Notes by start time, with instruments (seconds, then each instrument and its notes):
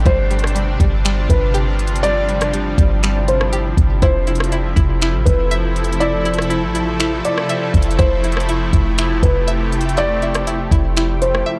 Already playing: ambient pad C3 D4
0.06 808-style bass G1, ambient pad F3 G3 F4, synth pluck G3, felt piano C5, kick, closed hi-hat
0.31 synth pluck G3, closed hi-hat
0.39 closed hi-hat
0.44 cross-stick, closed hi-hat
0.55 synth pluck G3, closed hi-hat
0.80 808-style bass G1, synth pluck G3, kick, closed hi-hat
1.05 synth pluck G3, finger snap, closed hi-hat
1.30 808-style bass G1, felt piano B4, kick, closed hi-hat
1.54 synth pluck G4, closed hi-hat
1.79 closed hi-hat
1.87 closed hi-hat
1.96 closed hi-hat
2.03 synth pluck G3, ambient pad E4, felt piano D5, closed hi-hat
2.29 synth pluck G3, closed hi-hat
2.41 cross-stick, closed hi-hat
2.53 synth pluck G3, closed hi-hat
2.78 808-style bass G1, synth pluck G3, kick, closed hi-hat
3.03 synth pluck G3, finger snap, closed hi-hat
3.28 felt piano C5, closed hi-hat
3.41 cross-stick
3.53 synth pluck G4, closed hi-hat
3.77 808-style bass G1, kick, closed hi-hat
4.02 808-style bass F1, ambient pad A3 A4, synth pluck E4, felt piano C5, kick, closed hi-hat
4.27 synth pluck E4, closed hi-hat
4.35 closed hi-hat
4.40 cross-stick, closed hi-hat
4.52 synth pluck E4, closed hi-hat
4.76 808-style bass F1, synth pluck E4, kick, closed hi-hat
5.01 synth pluck E4, finger snap, closed hi-hat
5.14 808-style bass A1
5.25 808-style bass F1, felt piano B4, kick, closed hi-hat
5.51 synth pluck E5, closed hi-hat
5.76 closed hi-hat
5.84 closed hi-hat
5.93 closed hi-hat
6.00 synth pluck E4, felt piano D5, closed hi-hat
6.25 synth pluck E4, closed hi-hat
6.34 closed hi-hat
6.38 cross-stick, closed hi-hat
6.50 synth pluck E4, closed hi-hat
6.63 808-style bass A1
6.75 synth pluck E4, closed hi-hat
7.00 synth pluck E4, finger snap, closed hi-hat
7.25 felt piano D5, closed hi-hat
7.38 cross-stick
7.49 synth pluck E5, closed hi-hat
7.74 808-style bass F1, kick, closed hi-hat
7.82 closed hi-hat
7.91 closed hi-hat
7.99 808-style bass F1, synth pluck E4, ambient pad G4, felt piano C5, kick, closed hi-hat
8.24 synth pluck E4, closed hi-hat
8.32 closed hi-hat
8.37 cross-stick, closed hi-hat
8.49 synth pluck E4, closed hi-hat
8.73 808-style bass F1, synth pluck E4, kick, closed hi-hat
8.98 synth pluck E4, finger snap, closed hi-hat
9.23 808-style bass F1, felt piano B4, kick, closed hi-hat
9.48 synth pluck E5, closed hi-hat
9.72 closed hi-hat
9.81 closed hi-hat
9.89 closed hi-hat
9.97 synth pluck E4, felt piano D5, closed hi-hat
10.22 synth pluck E4, closed hi-hat
10.35 cross-stick, closed hi-hat
10.47 synth pluck E4, closed hi-hat
10.71 808-style bass F1, synth pluck E4, kick, closed hi-hat
10.97 synth pluck E4, finger snap, closed hi-hat
11.22 felt piano C5, closed hi-hat
11.35 cross-stick
11.46 synth pluck E5